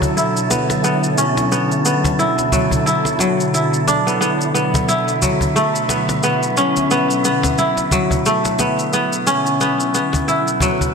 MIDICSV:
0, 0, Header, 1, 6, 480
1, 0, Start_track
1, 0, Key_signature, 2, "minor"
1, 0, Tempo, 674157
1, 1080, Time_signature, 4, 2, 24, 8
1, 7790, End_track
2, 0, Start_track
2, 0, Title_t, "Synth texture"
2, 0, Program_c, 0, 99
2, 0, Note_on_c, 0, 64, 81
2, 0, Note_on_c, 0, 81, 76
2, 3008, Note_on_c, 0, 76, 76
2, 3028, Note_off_c, 0, 81, 0
2, 6842, Note_on_c, 0, 71, 80
2, 6872, Note_off_c, 0, 76, 0
2, 7790, Note_off_c, 0, 64, 0
2, 7790, Note_off_c, 0, 71, 0
2, 7790, End_track
3, 0, Start_track
3, 0, Title_t, "Analog synth pad"
3, 0, Program_c, 1, 89
3, 0, Note_on_c, 1, 47, 78
3, 0, Note_on_c, 1, 50, 79
3, 0, Note_on_c, 1, 54, 77
3, 0, Note_on_c, 1, 69, 61
3, 0, Note_on_c, 1, 73, 72
3, 3329, Note_on_c, 1, 76, 72
3, 3357, Note_off_c, 1, 73, 0
3, 7790, Note_off_c, 1, 47, 0
3, 7790, Note_off_c, 1, 50, 0
3, 7790, Note_off_c, 1, 54, 0
3, 7790, Note_off_c, 1, 69, 0
3, 7790, Note_off_c, 1, 76, 0
3, 7790, End_track
4, 0, Start_track
4, 0, Title_t, "Kora"
4, 0, Program_c, 2, 46
4, 0, Note_on_c, 2, 54, 69
4, 0, Note_on_c, 2, 59, 64
4, 0, Note_on_c, 2, 61, 85
4, 0, Note_on_c, 2, 64, 67
4, 118, Note_off_c, 2, 64, 0
4, 120, Note_on_c, 2, 64, 72
4, 160, Note_off_c, 2, 61, 0
4, 356, Note_off_c, 2, 59, 0
4, 359, Note_on_c, 2, 59, 65
4, 596, Note_off_c, 2, 59, 0
4, 599, Note_on_c, 2, 59, 87
4, 839, Note_on_c, 2, 61, 79
4, 1078, Note_off_c, 2, 59, 0
4, 1081, Note_on_c, 2, 59, 83
4, 1236, Note_off_c, 2, 64, 0
4, 1318, Note_off_c, 2, 59, 0
4, 1321, Note_on_c, 2, 59, 67
4, 1547, Note_off_c, 2, 54, 0
4, 1560, Note_on_c, 2, 64, 72
4, 1798, Note_on_c, 2, 54, 62
4, 2034, Note_off_c, 2, 64, 0
4, 2037, Note_on_c, 2, 64, 72
4, 2077, Note_off_c, 2, 61, 0
4, 2270, Note_off_c, 2, 54, 0
4, 2279, Note_on_c, 2, 54, 63
4, 2518, Note_off_c, 2, 64, 0
4, 2521, Note_on_c, 2, 64, 66
4, 2648, Note_off_c, 2, 59, 0
4, 2759, Note_on_c, 2, 62, 80
4, 2896, Note_on_c, 2, 59, 66
4, 2992, Note_off_c, 2, 59, 0
4, 2995, Note_on_c, 2, 59, 80
4, 3233, Note_off_c, 2, 59, 0
4, 3236, Note_on_c, 2, 59, 67
4, 3475, Note_off_c, 2, 64, 0
4, 3478, Note_on_c, 2, 64, 65
4, 3708, Note_off_c, 2, 54, 0
4, 3717, Note_on_c, 2, 54, 64
4, 3954, Note_off_c, 2, 62, 0
4, 3957, Note_on_c, 2, 57, 76
4, 4196, Note_off_c, 2, 59, 0
4, 4199, Note_on_c, 2, 59, 60
4, 4437, Note_off_c, 2, 59, 0
4, 4440, Note_on_c, 2, 59, 81
4, 4594, Note_off_c, 2, 64, 0
4, 4679, Note_on_c, 2, 61, 90
4, 4917, Note_off_c, 2, 59, 0
4, 4920, Note_on_c, 2, 59, 82
4, 5158, Note_off_c, 2, 59, 0
4, 5161, Note_on_c, 2, 59, 68
4, 5379, Note_off_c, 2, 57, 0
4, 5383, Note_off_c, 2, 54, 0
4, 5401, Note_on_c, 2, 64, 72
4, 5641, Note_on_c, 2, 54, 66
4, 5881, Note_on_c, 2, 57, 76
4, 5917, Note_off_c, 2, 61, 0
4, 6119, Note_off_c, 2, 59, 0
4, 6122, Note_on_c, 2, 59, 64
4, 6358, Note_off_c, 2, 59, 0
4, 6361, Note_on_c, 2, 59, 82
4, 6516, Note_off_c, 2, 64, 0
4, 6600, Note_on_c, 2, 61, 88
4, 6838, Note_off_c, 2, 59, 0
4, 6840, Note_on_c, 2, 59, 85
4, 7078, Note_off_c, 2, 59, 0
4, 7081, Note_on_c, 2, 59, 67
4, 7303, Note_off_c, 2, 57, 0
4, 7307, Note_off_c, 2, 54, 0
4, 7319, Note_on_c, 2, 64, 68
4, 7560, Note_on_c, 2, 54, 65
4, 7790, Note_off_c, 2, 54, 0
4, 7790, Note_off_c, 2, 59, 0
4, 7790, Note_off_c, 2, 61, 0
4, 7790, Note_off_c, 2, 64, 0
4, 7790, End_track
5, 0, Start_track
5, 0, Title_t, "Cajon"
5, 12, Note_on_c, 9, 36, 86
5, 83, Note_off_c, 9, 36, 0
5, 361, Note_on_c, 9, 38, 67
5, 433, Note_off_c, 9, 38, 0
5, 497, Note_on_c, 9, 38, 66
5, 568, Note_off_c, 9, 38, 0
5, 978, Note_on_c, 9, 38, 69
5, 1049, Note_off_c, 9, 38, 0
5, 1456, Note_on_c, 9, 36, 83
5, 1460, Note_on_c, 9, 38, 64
5, 1527, Note_off_c, 9, 36, 0
5, 1531, Note_off_c, 9, 38, 0
5, 1697, Note_on_c, 9, 38, 50
5, 1769, Note_off_c, 9, 38, 0
5, 1795, Note_on_c, 9, 36, 91
5, 1866, Note_off_c, 9, 36, 0
5, 1931, Note_on_c, 9, 36, 83
5, 2003, Note_off_c, 9, 36, 0
5, 2171, Note_on_c, 9, 38, 63
5, 2243, Note_off_c, 9, 38, 0
5, 2270, Note_on_c, 9, 38, 62
5, 2341, Note_off_c, 9, 38, 0
5, 2759, Note_on_c, 9, 38, 53
5, 2830, Note_off_c, 9, 38, 0
5, 3375, Note_on_c, 9, 36, 77
5, 3382, Note_on_c, 9, 38, 71
5, 3446, Note_off_c, 9, 36, 0
5, 3453, Note_off_c, 9, 38, 0
5, 3720, Note_on_c, 9, 36, 72
5, 3791, Note_off_c, 9, 36, 0
5, 3850, Note_on_c, 9, 36, 87
5, 3921, Note_off_c, 9, 36, 0
5, 4193, Note_on_c, 9, 38, 69
5, 4264, Note_off_c, 9, 38, 0
5, 4335, Note_on_c, 9, 38, 68
5, 4406, Note_off_c, 9, 38, 0
5, 4821, Note_on_c, 9, 38, 58
5, 4892, Note_off_c, 9, 38, 0
5, 5293, Note_on_c, 9, 38, 73
5, 5300, Note_on_c, 9, 36, 74
5, 5364, Note_off_c, 9, 38, 0
5, 5371, Note_off_c, 9, 36, 0
5, 5534, Note_on_c, 9, 38, 51
5, 5606, Note_off_c, 9, 38, 0
5, 5634, Note_on_c, 9, 36, 81
5, 5706, Note_off_c, 9, 36, 0
5, 5772, Note_on_c, 9, 36, 84
5, 5844, Note_off_c, 9, 36, 0
5, 6017, Note_on_c, 9, 38, 66
5, 6089, Note_off_c, 9, 38, 0
5, 6115, Note_on_c, 9, 38, 62
5, 6186, Note_off_c, 9, 38, 0
5, 7212, Note_on_c, 9, 38, 67
5, 7220, Note_on_c, 9, 36, 73
5, 7283, Note_off_c, 9, 38, 0
5, 7291, Note_off_c, 9, 36, 0
5, 7550, Note_on_c, 9, 36, 87
5, 7621, Note_off_c, 9, 36, 0
5, 7697, Note_on_c, 9, 36, 77
5, 7768, Note_off_c, 9, 36, 0
5, 7790, End_track
6, 0, Start_track
6, 0, Title_t, "Drums"
6, 21, Note_on_c, 9, 82, 28
6, 92, Note_off_c, 9, 82, 0
6, 124, Note_on_c, 9, 82, 39
6, 195, Note_off_c, 9, 82, 0
6, 261, Note_on_c, 9, 82, 30
6, 333, Note_off_c, 9, 82, 0
6, 362, Note_on_c, 9, 82, 68
6, 433, Note_off_c, 9, 82, 0
6, 499, Note_on_c, 9, 82, 31
6, 570, Note_off_c, 9, 82, 0
6, 599, Note_on_c, 9, 82, 37
6, 670, Note_off_c, 9, 82, 0
6, 738, Note_on_c, 9, 82, 28
6, 809, Note_off_c, 9, 82, 0
6, 839, Note_on_c, 9, 82, 76
6, 911, Note_off_c, 9, 82, 0
6, 977, Note_on_c, 9, 82, 30
6, 1049, Note_off_c, 9, 82, 0
6, 1082, Note_on_c, 9, 82, 40
6, 1153, Note_off_c, 9, 82, 0
6, 1221, Note_on_c, 9, 82, 28
6, 1292, Note_off_c, 9, 82, 0
6, 1320, Note_on_c, 9, 82, 68
6, 1391, Note_off_c, 9, 82, 0
6, 1458, Note_on_c, 9, 82, 29
6, 1530, Note_off_c, 9, 82, 0
6, 1561, Note_on_c, 9, 82, 36
6, 1632, Note_off_c, 9, 82, 0
6, 1698, Note_on_c, 9, 82, 27
6, 1770, Note_off_c, 9, 82, 0
6, 1800, Note_on_c, 9, 82, 68
6, 1871, Note_off_c, 9, 82, 0
6, 1939, Note_on_c, 9, 82, 26
6, 2010, Note_off_c, 9, 82, 0
6, 2043, Note_on_c, 9, 82, 41
6, 2114, Note_off_c, 9, 82, 0
6, 2181, Note_on_c, 9, 82, 28
6, 2252, Note_off_c, 9, 82, 0
6, 2282, Note_on_c, 9, 82, 67
6, 2353, Note_off_c, 9, 82, 0
6, 2422, Note_on_c, 9, 82, 29
6, 2494, Note_off_c, 9, 82, 0
6, 2522, Note_on_c, 9, 82, 37
6, 2594, Note_off_c, 9, 82, 0
6, 2660, Note_on_c, 9, 82, 28
6, 2731, Note_off_c, 9, 82, 0
6, 2762, Note_on_c, 9, 82, 74
6, 2834, Note_off_c, 9, 82, 0
6, 2902, Note_on_c, 9, 82, 30
6, 2973, Note_off_c, 9, 82, 0
6, 3004, Note_on_c, 9, 82, 39
6, 3075, Note_off_c, 9, 82, 0
6, 3141, Note_on_c, 9, 82, 26
6, 3212, Note_off_c, 9, 82, 0
6, 3241, Note_on_c, 9, 82, 66
6, 3312, Note_off_c, 9, 82, 0
6, 3379, Note_on_c, 9, 82, 29
6, 3450, Note_off_c, 9, 82, 0
6, 3480, Note_on_c, 9, 82, 36
6, 3551, Note_off_c, 9, 82, 0
6, 3618, Note_on_c, 9, 82, 25
6, 3689, Note_off_c, 9, 82, 0
6, 3718, Note_on_c, 9, 82, 65
6, 3789, Note_off_c, 9, 82, 0
6, 3857, Note_on_c, 9, 82, 27
6, 3928, Note_off_c, 9, 82, 0
6, 3961, Note_on_c, 9, 82, 41
6, 4032, Note_off_c, 9, 82, 0
6, 4098, Note_on_c, 9, 82, 29
6, 4169, Note_off_c, 9, 82, 0
6, 4199, Note_on_c, 9, 82, 63
6, 4270, Note_off_c, 9, 82, 0
6, 4336, Note_on_c, 9, 82, 30
6, 4407, Note_off_c, 9, 82, 0
6, 4437, Note_on_c, 9, 82, 39
6, 4508, Note_off_c, 9, 82, 0
6, 4576, Note_on_c, 9, 82, 28
6, 4647, Note_off_c, 9, 82, 0
6, 4677, Note_on_c, 9, 82, 69
6, 4749, Note_off_c, 9, 82, 0
6, 4816, Note_on_c, 9, 82, 31
6, 4887, Note_off_c, 9, 82, 0
6, 4919, Note_on_c, 9, 82, 35
6, 4990, Note_off_c, 9, 82, 0
6, 5059, Note_on_c, 9, 82, 25
6, 5130, Note_off_c, 9, 82, 0
6, 5159, Note_on_c, 9, 82, 64
6, 5230, Note_off_c, 9, 82, 0
6, 5298, Note_on_c, 9, 82, 28
6, 5370, Note_off_c, 9, 82, 0
6, 5398, Note_on_c, 9, 82, 38
6, 5469, Note_off_c, 9, 82, 0
6, 5536, Note_on_c, 9, 82, 24
6, 5607, Note_off_c, 9, 82, 0
6, 5639, Note_on_c, 9, 82, 65
6, 5710, Note_off_c, 9, 82, 0
6, 5778, Note_on_c, 9, 82, 25
6, 5849, Note_off_c, 9, 82, 0
6, 5879, Note_on_c, 9, 82, 38
6, 5950, Note_off_c, 9, 82, 0
6, 6016, Note_on_c, 9, 82, 28
6, 6087, Note_off_c, 9, 82, 0
6, 6116, Note_on_c, 9, 82, 67
6, 6187, Note_off_c, 9, 82, 0
6, 6258, Note_on_c, 9, 82, 29
6, 6330, Note_off_c, 9, 82, 0
6, 6359, Note_on_c, 9, 82, 37
6, 6430, Note_off_c, 9, 82, 0
6, 6498, Note_on_c, 9, 82, 28
6, 6569, Note_off_c, 9, 82, 0
6, 6600, Note_on_c, 9, 82, 68
6, 6671, Note_off_c, 9, 82, 0
6, 6737, Note_on_c, 9, 82, 29
6, 6808, Note_off_c, 9, 82, 0
6, 6840, Note_on_c, 9, 82, 34
6, 6911, Note_off_c, 9, 82, 0
6, 6978, Note_on_c, 9, 82, 28
6, 7050, Note_off_c, 9, 82, 0
6, 7080, Note_on_c, 9, 82, 70
6, 7151, Note_off_c, 9, 82, 0
6, 7221, Note_on_c, 9, 82, 28
6, 7293, Note_off_c, 9, 82, 0
6, 7322, Note_on_c, 9, 82, 34
6, 7393, Note_off_c, 9, 82, 0
6, 7459, Note_on_c, 9, 82, 24
6, 7530, Note_off_c, 9, 82, 0
6, 7561, Note_on_c, 9, 82, 62
6, 7633, Note_off_c, 9, 82, 0
6, 7701, Note_on_c, 9, 82, 26
6, 7772, Note_off_c, 9, 82, 0
6, 7790, End_track
0, 0, End_of_file